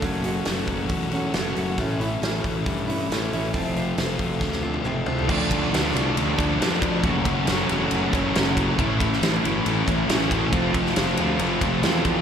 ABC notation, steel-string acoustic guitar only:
X:1
M:4/4
L:1/8
Q:1/4=138
K:Aphr
V:1 name="Steel-string acoustic guitar"
[^F,,^C,^F,A,^C^F] [F,A,CF] [F,A,CF]3 [F,A,CF] [F,,C,F,A,CF] [F,A,CF] | [A,,E,A,^CE] [A,CE] [E,A,CE]3 [A,CE] [A,,E,A,CE] [A,CE] | [F,,C,F,A,CF] [F,A,CF] [F,A,CF]3 [F,A,CF] [F,,C,F,A,CF] [F,A,CF] | z8 |
z8 | z8 | z8 |]